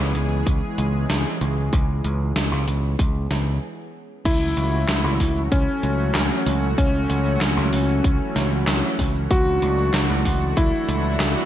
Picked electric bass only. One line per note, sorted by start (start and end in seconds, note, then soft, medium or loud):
0.00 0.13 C#2 loud
0.15 0.42 C#2 medium
0.47 0.60 C#2 medium
0.78 1.05 C#2 medium
1.10 1.23 C#2 medium
1.41 1.68 C#2 medium
1.73 2.00 C#2 loud
2.04 2.31 C#2 loud
2.36 2.49 C#2 medium
2.52 2.65 C#2 loud
2.68 2.95 C#2 medium
2.99 3.26 C#2 medium
3.31 3.58 C#2 medium
4.25 4.52 C#2 loud
4.57 4.84 C#2 loud
4.89 5.02 C#2 medium
5.04 5.18 C#2 loud
5.20 5.47 C#2 medium
5.52 5.65 C#2 medium
5.83 6.10 C#2 medium
6.15 6.28 C#2 medium
6.47 6.73 C#2 medium
6.78 7.05 C#2 loud
7.10 7.37 C#2 loud
7.41 7.55 C#2 medium
7.57 7.70 C#2 loud
7.73 8.00 C#2 medium
8.36 8.63 C#2 medium
8.68 8.81 C#2 medium
8.99 9.26 C#2 medium
9.31 9.58 C#2 loud
9.62 9.89 C#2 loud
9.94 10.07 C#2 medium
10.10 10.23 C#2 loud
10.57 10.70 C#2 medium
10.89 11.16 C#2 medium
11.20 11.34 C#2 medium